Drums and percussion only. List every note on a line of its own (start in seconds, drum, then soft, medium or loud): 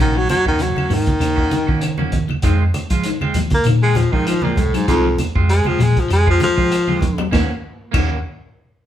0.29 closed hi-hat medium
0.29 high conga loud
0.29 claves medium
0.46 kick medium
0.59 closed hi-hat medium
0.77 high conga medium
0.77 claves medium
0.90 open hi-hat medium
0.90 low conga medium
1.07 kick medium
1.07 closed hi-hat soft
1.07 high conga medium
1.21 closed hi-hat medium
1.21 claves medium
1.38 kick medium
1.51 closed hi-hat medium
1.51 high conga medium
1.68 kick medium
1.81 closed hi-hat medium
1.81 claves medium
1.98 high conga medium
2.12 kick medium
2.12 closed hi-hat medium
2.12 low conga medium
2.29 high conga medium
2.29 claves medium
2.42 kick medium
2.42 closed hi-hat medium
2.74 closed hi-hat medium
2.74 high conga medium
2.74 claves medium
2.90 kick medium
2.90 closed hi-hat medium
3.03 closed hi-hat medium
3.21 high conga medium
3.21 claves medium
3.34 closed hi-hat medium
3.34 low conga medium
3.50 kick medium
3.50 closed hi-hat soft
3.50 high conga medium
3.64 closed hi-hat medium
3.64 high conga medium
3.64 claves medium
3.95 closed hi-hat medium
3.95 high conga medium
3.95 low conga medium
4.13 kick medium
4.27 closed hi-hat medium
4.27 claves medium
4.42 high conga medium
4.56 kick medium
4.56 closed hi-hat medium
4.56 low conga medium
4.74 closed hi-hat medium
4.74 claves medium
4.88 kick medium
4.88 closed hi-hat medium
5.19 closed hi-hat medium
5.19 high conga medium
5.19 low conga medium
5.19 claves medium
5.36 kick medium
5.49 closed hi-hat medium
5.64 high conga medium
5.64 claves medium
5.79 closed hi-hat medium
5.79 low conga medium
5.97 kick medium
5.97 closed hi-hat soft
6.10 closed hi-hat medium
6.10 claves medium
6.27 kick medium
6.40 closed hi-hat medium
6.40 high conga medium
6.58 kick medium
6.72 closed hi-hat medium
6.72 claves medium
6.88 high conga medium
7.01 kick medium
7.01 closed hi-hat soft
7.01 low conga medium
7.18 low conga loud
7.18 claves medium
7.32 kick medium
7.32 snare medium
7.32 low conga loud
7.32 claves loud
7.94 kick medium
7.94 crash medium
7.94 low conga loud
7.94 claves loud